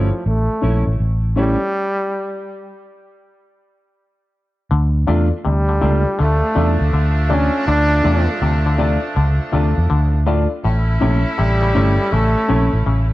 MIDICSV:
0, 0, Header, 1, 8, 480
1, 0, Start_track
1, 0, Key_signature, -1, "minor"
1, 0, Tempo, 741656
1, 1124, Time_signature, 4, 2, 24, 8
1, 8498, End_track
2, 0, Start_track
2, 0, Title_t, "Upright piano"
2, 0, Program_c, 0, 0
2, 0, Note_on_c, 0, 69, 84
2, 0, Note_on_c, 0, 73, 101
2, 67, Note_off_c, 0, 69, 0
2, 68, Note_off_c, 0, 73, 0
2, 397, Note_on_c, 0, 61, 87
2, 400, Note_on_c, 0, 64, 82
2, 402, Note_on_c, 0, 69, 78
2, 405, Note_on_c, 0, 73, 98
2, 544, Note_off_c, 0, 61, 0
2, 546, Note_off_c, 0, 64, 0
2, 547, Note_off_c, 0, 69, 0
2, 547, Note_off_c, 0, 73, 0
2, 557, Note_on_c, 0, 69, 24
2, 557, Note_on_c, 0, 73, 27
2, 592, Note_off_c, 0, 69, 0
2, 592, Note_off_c, 0, 73, 0
2, 879, Note_on_c, 0, 61, 96
2, 881, Note_on_c, 0, 64, 88
2, 884, Note_on_c, 0, 69, 76
2, 888, Note_on_c, 0, 73, 103
2, 1025, Note_off_c, 0, 61, 0
2, 1026, Note_off_c, 0, 64, 0
2, 1028, Note_off_c, 0, 69, 0
2, 1030, Note_off_c, 0, 73, 0
2, 3279, Note_on_c, 0, 62, 93
2, 3281, Note_on_c, 0, 65, 87
2, 3284, Note_on_c, 0, 69, 88
2, 3286, Note_on_c, 0, 74, 103
2, 3426, Note_off_c, 0, 62, 0
2, 3427, Note_off_c, 0, 65, 0
2, 3429, Note_off_c, 0, 69, 0
2, 3430, Note_off_c, 0, 74, 0
2, 3680, Note_on_c, 0, 69, 27
2, 3680, Note_on_c, 0, 74, 28
2, 3714, Note_off_c, 0, 69, 0
2, 3714, Note_off_c, 0, 74, 0
2, 3758, Note_on_c, 0, 62, 86
2, 3761, Note_on_c, 0, 65, 84
2, 3763, Note_on_c, 0, 69, 88
2, 3767, Note_on_c, 0, 74, 99
2, 3906, Note_off_c, 0, 62, 0
2, 3907, Note_off_c, 0, 65, 0
2, 3908, Note_off_c, 0, 69, 0
2, 3910, Note_off_c, 0, 74, 0
2, 4237, Note_on_c, 0, 62, 94
2, 4239, Note_on_c, 0, 65, 87
2, 4242, Note_on_c, 0, 69, 83
2, 4244, Note_on_c, 0, 74, 94
2, 4385, Note_off_c, 0, 62, 0
2, 4385, Note_off_c, 0, 69, 0
2, 4386, Note_off_c, 0, 65, 0
2, 4386, Note_off_c, 0, 74, 0
2, 4394, Note_on_c, 0, 69, 28
2, 4395, Note_on_c, 0, 74, 28
2, 4432, Note_off_c, 0, 69, 0
2, 4432, Note_off_c, 0, 74, 0
2, 4717, Note_on_c, 0, 62, 96
2, 4718, Note_on_c, 0, 65, 84
2, 4721, Note_on_c, 0, 69, 88
2, 4723, Note_on_c, 0, 74, 102
2, 4865, Note_off_c, 0, 62, 0
2, 4866, Note_off_c, 0, 65, 0
2, 4867, Note_off_c, 0, 69, 0
2, 4868, Note_off_c, 0, 74, 0
2, 5198, Note_on_c, 0, 62, 94
2, 5201, Note_on_c, 0, 65, 81
2, 5203, Note_on_c, 0, 69, 84
2, 5206, Note_on_c, 0, 74, 100
2, 5346, Note_off_c, 0, 62, 0
2, 5347, Note_off_c, 0, 65, 0
2, 5348, Note_off_c, 0, 69, 0
2, 5350, Note_off_c, 0, 74, 0
2, 5599, Note_on_c, 0, 69, 26
2, 5599, Note_on_c, 0, 74, 28
2, 5634, Note_off_c, 0, 69, 0
2, 5634, Note_off_c, 0, 74, 0
2, 5680, Note_on_c, 0, 62, 97
2, 5682, Note_on_c, 0, 65, 85
2, 5685, Note_on_c, 0, 69, 88
2, 5688, Note_on_c, 0, 74, 105
2, 5827, Note_off_c, 0, 62, 0
2, 5828, Note_off_c, 0, 65, 0
2, 5829, Note_off_c, 0, 69, 0
2, 5831, Note_off_c, 0, 74, 0
2, 6160, Note_on_c, 0, 62, 91
2, 6162, Note_on_c, 0, 65, 91
2, 6165, Note_on_c, 0, 69, 87
2, 6168, Note_on_c, 0, 74, 98
2, 6307, Note_off_c, 0, 62, 0
2, 6308, Note_off_c, 0, 65, 0
2, 6308, Note_off_c, 0, 74, 0
2, 6309, Note_off_c, 0, 69, 0
2, 6318, Note_on_c, 0, 74, 28
2, 6319, Note_on_c, 0, 69, 26
2, 6354, Note_off_c, 0, 69, 0
2, 6354, Note_off_c, 0, 74, 0
2, 6642, Note_on_c, 0, 62, 92
2, 6644, Note_on_c, 0, 65, 86
2, 6646, Note_on_c, 0, 69, 88
2, 6649, Note_on_c, 0, 74, 108
2, 6788, Note_off_c, 0, 62, 0
2, 6789, Note_off_c, 0, 65, 0
2, 6790, Note_off_c, 0, 69, 0
2, 6791, Note_off_c, 0, 74, 0
2, 7121, Note_on_c, 0, 61, 88
2, 7124, Note_on_c, 0, 64, 87
2, 7126, Note_on_c, 0, 69, 81
2, 7129, Note_on_c, 0, 73, 106
2, 7267, Note_off_c, 0, 61, 0
2, 7269, Note_off_c, 0, 64, 0
2, 7270, Note_off_c, 0, 69, 0
2, 7271, Note_off_c, 0, 73, 0
2, 7519, Note_on_c, 0, 69, 26
2, 7520, Note_on_c, 0, 73, 29
2, 7554, Note_off_c, 0, 69, 0
2, 7554, Note_off_c, 0, 73, 0
2, 7600, Note_on_c, 0, 61, 89
2, 7603, Note_on_c, 0, 64, 87
2, 7605, Note_on_c, 0, 69, 93
2, 7608, Note_on_c, 0, 73, 112
2, 7747, Note_off_c, 0, 61, 0
2, 7748, Note_off_c, 0, 64, 0
2, 7749, Note_off_c, 0, 69, 0
2, 7751, Note_off_c, 0, 73, 0
2, 8079, Note_on_c, 0, 61, 93
2, 8083, Note_on_c, 0, 64, 86
2, 8085, Note_on_c, 0, 69, 81
2, 8087, Note_on_c, 0, 73, 101
2, 8226, Note_off_c, 0, 61, 0
2, 8228, Note_off_c, 0, 64, 0
2, 8229, Note_off_c, 0, 69, 0
2, 8229, Note_off_c, 0, 73, 0
2, 8239, Note_on_c, 0, 69, 27
2, 8239, Note_on_c, 0, 73, 30
2, 8274, Note_off_c, 0, 69, 0
2, 8274, Note_off_c, 0, 73, 0
2, 8498, End_track
3, 0, Start_track
3, 0, Title_t, "Clean electric guitar"
3, 0, Program_c, 1, 27
3, 404, Note_on_c, 1, 57, 78
3, 409, Note_on_c, 1, 61, 84
3, 413, Note_on_c, 1, 64, 88
3, 532, Note_off_c, 1, 57, 0
3, 534, Note_off_c, 1, 61, 0
3, 536, Note_off_c, 1, 64, 0
3, 887, Note_on_c, 1, 57, 86
3, 892, Note_on_c, 1, 61, 86
3, 895, Note_on_c, 1, 64, 98
3, 1014, Note_off_c, 1, 57, 0
3, 1016, Note_off_c, 1, 61, 0
3, 1017, Note_off_c, 1, 64, 0
3, 3286, Note_on_c, 1, 57, 88
3, 3291, Note_on_c, 1, 62, 95
3, 3293, Note_on_c, 1, 65, 99
3, 3414, Note_off_c, 1, 57, 0
3, 3416, Note_off_c, 1, 62, 0
3, 3417, Note_off_c, 1, 65, 0
3, 3767, Note_on_c, 1, 57, 79
3, 3770, Note_on_c, 1, 62, 82
3, 3776, Note_on_c, 1, 65, 94
3, 3895, Note_off_c, 1, 57, 0
3, 3896, Note_off_c, 1, 62, 0
3, 3899, Note_off_c, 1, 65, 0
3, 4246, Note_on_c, 1, 57, 84
3, 4250, Note_on_c, 1, 62, 86
3, 4256, Note_on_c, 1, 65, 82
3, 4374, Note_off_c, 1, 57, 0
3, 4376, Note_off_c, 1, 62, 0
3, 4379, Note_off_c, 1, 65, 0
3, 4725, Note_on_c, 1, 57, 82
3, 4729, Note_on_c, 1, 62, 84
3, 4733, Note_on_c, 1, 65, 83
3, 4854, Note_off_c, 1, 57, 0
3, 4855, Note_off_c, 1, 62, 0
3, 4858, Note_off_c, 1, 65, 0
3, 5204, Note_on_c, 1, 57, 87
3, 5210, Note_on_c, 1, 62, 86
3, 5212, Note_on_c, 1, 65, 97
3, 5333, Note_off_c, 1, 57, 0
3, 5336, Note_off_c, 1, 62, 0
3, 5337, Note_off_c, 1, 65, 0
3, 5685, Note_on_c, 1, 57, 76
3, 5691, Note_on_c, 1, 62, 92
3, 5693, Note_on_c, 1, 65, 92
3, 5813, Note_off_c, 1, 57, 0
3, 5817, Note_off_c, 1, 62, 0
3, 5818, Note_off_c, 1, 65, 0
3, 6164, Note_on_c, 1, 57, 79
3, 6169, Note_on_c, 1, 62, 78
3, 6173, Note_on_c, 1, 65, 99
3, 6293, Note_off_c, 1, 57, 0
3, 6296, Note_off_c, 1, 62, 0
3, 6298, Note_off_c, 1, 65, 0
3, 6641, Note_on_c, 1, 57, 90
3, 6645, Note_on_c, 1, 62, 90
3, 6651, Note_on_c, 1, 65, 83
3, 6771, Note_off_c, 1, 57, 0
3, 6773, Note_off_c, 1, 62, 0
3, 6776, Note_off_c, 1, 65, 0
3, 7126, Note_on_c, 1, 57, 80
3, 7131, Note_on_c, 1, 61, 84
3, 7134, Note_on_c, 1, 64, 91
3, 7254, Note_off_c, 1, 57, 0
3, 7256, Note_off_c, 1, 61, 0
3, 7258, Note_off_c, 1, 64, 0
3, 7607, Note_on_c, 1, 57, 83
3, 7611, Note_on_c, 1, 61, 85
3, 7616, Note_on_c, 1, 64, 97
3, 7734, Note_off_c, 1, 57, 0
3, 7736, Note_off_c, 1, 61, 0
3, 7739, Note_off_c, 1, 64, 0
3, 8084, Note_on_c, 1, 57, 79
3, 8088, Note_on_c, 1, 61, 94
3, 8093, Note_on_c, 1, 64, 89
3, 8213, Note_off_c, 1, 57, 0
3, 8215, Note_off_c, 1, 61, 0
3, 8217, Note_off_c, 1, 64, 0
3, 8498, End_track
4, 0, Start_track
4, 0, Title_t, "Horn section"
4, 0, Program_c, 2, 61
4, 4004, Note_on_c, 2, 57, 86
4, 4005, Note_on_c, 2, 53, 78
4, 4005, Note_on_c, 2, 62, 99
4, 6619, Note_off_c, 2, 57, 0
4, 6620, Note_off_c, 2, 53, 0
4, 6620, Note_off_c, 2, 62, 0
4, 6883, Note_on_c, 2, 61, 90
4, 6884, Note_on_c, 2, 57, 89
4, 6884, Note_on_c, 2, 64, 97
4, 8498, Note_off_c, 2, 57, 0
4, 8498, Note_off_c, 2, 61, 0
4, 8498, Note_off_c, 2, 64, 0
4, 8498, End_track
5, 0, Start_track
5, 0, Title_t, "Trombone"
5, 0, Program_c, 3, 57
5, 0, Note_on_c, 3, 53, 74
5, 154, Note_off_c, 3, 53, 0
5, 176, Note_on_c, 3, 57, 92
5, 624, Note_off_c, 3, 57, 0
5, 892, Note_on_c, 3, 55, 113
5, 1823, Note_off_c, 3, 55, 0
5, 3533, Note_on_c, 3, 55, 95
5, 4013, Note_on_c, 3, 57, 113
5, 4023, Note_off_c, 3, 55, 0
5, 4489, Note_off_c, 3, 57, 0
5, 4730, Note_on_c, 3, 61, 93
5, 4951, Note_off_c, 3, 61, 0
5, 4968, Note_on_c, 3, 62, 123
5, 5421, Note_off_c, 3, 62, 0
5, 7372, Note_on_c, 3, 55, 98
5, 7849, Note_on_c, 3, 57, 118
5, 7859, Note_off_c, 3, 55, 0
5, 8327, Note_off_c, 3, 57, 0
5, 8498, End_track
6, 0, Start_track
6, 0, Title_t, "Clav"
6, 0, Program_c, 4, 7
6, 3047, Note_on_c, 4, 50, 80
6, 3165, Note_off_c, 4, 50, 0
6, 3284, Note_on_c, 4, 48, 75
6, 3403, Note_off_c, 4, 48, 0
6, 3525, Note_on_c, 4, 48, 73
6, 3643, Note_off_c, 4, 48, 0
6, 3681, Note_on_c, 4, 50, 71
6, 3745, Note_off_c, 4, 50, 0
6, 3763, Note_on_c, 4, 48, 82
6, 3882, Note_off_c, 4, 48, 0
6, 4005, Note_on_c, 4, 50, 84
6, 4123, Note_off_c, 4, 50, 0
6, 4244, Note_on_c, 4, 48, 83
6, 4363, Note_off_c, 4, 48, 0
6, 4488, Note_on_c, 4, 50, 75
6, 4605, Note_off_c, 4, 50, 0
6, 4725, Note_on_c, 4, 48, 80
6, 4843, Note_off_c, 4, 48, 0
6, 4967, Note_on_c, 4, 50, 80
6, 5085, Note_off_c, 4, 50, 0
6, 5210, Note_on_c, 4, 48, 87
6, 5327, Note_off_c, 4, 48, 0
6, 5449, Note_on_c, 4, 48, 86
6, 5566, Note_off_c, 4, 48, 0
6, 5606, Note_on_c, 4, 50, 72
6, 5669, Note_off_c, 4, 50, 0
6, 5691, Note_on_c, 4, 48, 83
6, 5807, Note_off_c, 4, 48, 0
6, 5930, Note_on_c, 4, 50, 81
6, 6046, Note_off_c, 4, 50, 0
6, 6166, Note_on_c, 4, 48, 79
6, 6284, Note_off_c, 4, 48, 0
6, 6406, Note_on_c, 4, 50, 85
6, 6524, Note_off_c, 4, 50, 0
6, 6645, Note_on_c, 4, 45, 82
6, 6763, Note_off_c, 4, 45, 0
6, 6889, Note_on_c, 4, 45, 82
6, 7006, Note_off_c, 4, 45, 0
6, 7129, Note_on_c, 4, 48, 80
6, 7246, Note_off_c, 4, 48, 0
6, 7366, Note_on_c, 4, 48, 73
6, 7484, Note_off_c, 4, 48, 0
6, 7521, Note_on_c, 4, 49, 72
6, 7585, Note_off_c, 4, 49, 0
6, 7607, Note_on_c, 4, 48, 86
6, 7724, Note_off_c, 4, 48, 0
6, 7847, Note_on_c, 4, 49, 83
6, 7964, Note_off_c, 4, 49, 0
6, 8083, Note_on_c, 4, 48, 81
6, 8202, Note_off_c, 4, 48, 0
6, 8326, Note_on_c, 4, 49, 84
6, 8444, Note_off_c, 4, 49, 0
6, 8498, End_track
7, 0, Start_track
7, 0, Title_t, "Fingered electric bass"
7, 0, Program_c, 5, 33
7, 0, Note_on_c, 5, 31, 78
7, 66, Note_off_c, 5, 31, 0
7, 168, Note_on_c, 5, 33, 94
7, 305, Note_off_c, 5, 33, 0
7, 409, Note_on_c, 5, 34, 88
7, 547, Note_off_c, 5, 34, 0
7, 563, Note_on_c, 5, 33, 82
7, 637, Note_off_c, 5, 33, 0
7, 648, Note_on_c, 5, 33, 93
7, 1002, Note_off_c, 5, 33, 0
7, 3052, Note_on_c, 5, 38, 105
7, 3264, Note_off_c, 5, 38, 0
7, 3292, Note_on_c, 5, 40, 87
7, 3429, Note_off_c, 5, 40, 0
7, 3533, Note_on_c, 5, 38, 80
7, 3745, Note_off_c, 5, 38, 0
7, 3772, Note_on_c, 5, 37, 90
7, 3909, Note_off_c, 5, 37, 0
7, 4014, Note_on_c, 5, 38, 98
7, 4150, Note_off_c, 5, 38, 0
7, 4249, Note_on_c, 5, 40, 100
7, 4387, Note_off_c, 5, 40, 0
7, 4406, Note_on_c, 5, 38, 90
7, 4480, Note_off_c, 5, 38, 0
7, 4488, Note_on_c, 5, 38, 92
7, 4843, Note_off_c, 5, 38, 0
7, 4969, Note_on_c, 5, 38, 102
7, 5183, Note_off_c, 5, 38, 0
7, 5211, Note_on_c, 5, 40, 90
7, 5348, Note_off_c, 5, 40, 0
7, 5448, Note_on_c, 5, 38, 91
7, 5802, Note_off_c, 5, 38, 0
7, 5932, Note_on_c, 5, 37, 101
7, 6069, Note_off_c, 5, 37, 0
7, 6171, Note_on_c, 5, 38, 94
7, 6309, Note_off_c, 5, 38, 0
7, 6328, Note_on_c, 5, 40, 86
7, 6401, Note_off_c, 5, 40, 0
7, 6415, Note_on_c, 5, 38, 96
7, 6766, Note_off_c, 5, 38, 0
7, 6893, Note_on_c, 5, 33, 111
7, 7105, Note_off_c, 5, 33, 0
7, 7135, Note_on_c, 5, 34, 87
7, 7270, Note_off_c, 5, 34, 0
7, 7373, Note_on_c, 5, 33, 94
7, 7585, Note_off_c, 5, 33, 0
7, 7610, Note_on_c, 5, 31, 87
7, 7748, Note_off_c, 5, 31, 0
7, 7849, Note_on_c, 5, 33, 102
7, 7987, Note_off_c, 5, 33, 0
7, 8089, Note_on_c, 5, 34, 94
7, 8227, Note_off_c, 5, 34, 0
7, 8240, Note_on_c, 5, 33, 89
7, 8316, Note_off_c, 5, 33, 0
7, 8327, Note_on_c, 5, 33, 93
7, 8498, Note_off_c, 5, 33, 0
7, 8498, End_track
8, 0, Start_track
8, 0, Title_t, "Muted clean electric guitar strokes"
8, 6560, Note_on_c, 9, 29, 50
8, 6625, Note_off_c, 9, 29, 0
8, 8498, End_track
0, 0, End_of_file